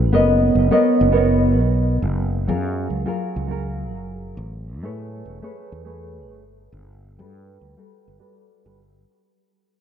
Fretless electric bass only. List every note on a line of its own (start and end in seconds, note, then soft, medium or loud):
0.00 0.13 B1 medium
0.13 0.51 F#1 medium
0.55 0.69 F#1 medium
1.01 1.60 F#1 medium
1.60 1.98 B1 medium
2.02 2.50 F#1 medium
2.49 2.86 F#2 medium
2.90 3.04 C#2 medium
3.36 3.95 C#2 medium
3.95 4.33 F#1 medium
4.37 4.84 A1 medium
4.84 5.22 A2 medium
5.25 5.39 E1 medium
5.72 6.30 E2 medium
6.30 6.69 G1 medium
6.72 7.21 G1 medium
7.19 7.57 G2 medium
7.61 7.75 D2 medium
8.08 8.17 G1 medium
8.66 9.04 G1 medium